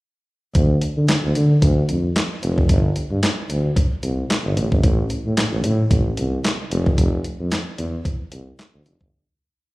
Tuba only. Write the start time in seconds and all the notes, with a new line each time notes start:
0.55 D2
0.97 D3
1.24 D2
1.36 D3
1.62 D2
1.89 F2
2.42 F1
2.69 G1
3.11 G2
3.50 D2
4.03 C2
4.45 G1
4.57 A1
4.72 G1
4.84 A1
5.26 A2
5.52 A1
5.64 A2
5.91 A1
6.18 C2
6.71 F1
6.98 F1
7.40 F2
7.79 E2
8.32 C2
8.74 D2
8.86 F1
9.01 G1